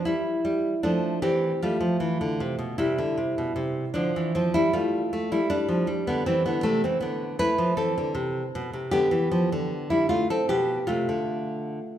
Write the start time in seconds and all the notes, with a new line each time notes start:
0.05 G3 E4
0.45 G3
0.83 F3 A3 D4
1.22 E3 C4 G4
1.63 G3 A3 F4
1.81 F3
2.00 E3
2.21 D3
2.40 C3
2.59 B2
2.78 C3 G3 E4
2.98 D3
3.18 C3
3.38 B2
3.56 C3
3.94 D3 F3 D4
4.16 E3
4.35 F3 C4
4.54 G3 E4
4.73 G3 A3 F4
5.13 A3
5.32 G3 E4
5.50 G3 D4
5.68 F3
5.87 G3
6.07 D3 B3
6.26 E3 C4
6.46 D3 B3
6.63 C3 A3
6.84 E3 C4
7.01 D3 B3
7.39 A3 E4 B4
7.58 F3
7.77 E3 C4 A4
7.98 D3
8.15 C3
8.55 B2
8.73 C3
8.91 D3 B3 G4
9.11 E3
9.31 F3
9.52 D3
9.90 G3 E4
10.09 A3 F4
10.30 C4 A4
10.49 B2 B3 G4
10.87 C3 A3 F4
11.09 D3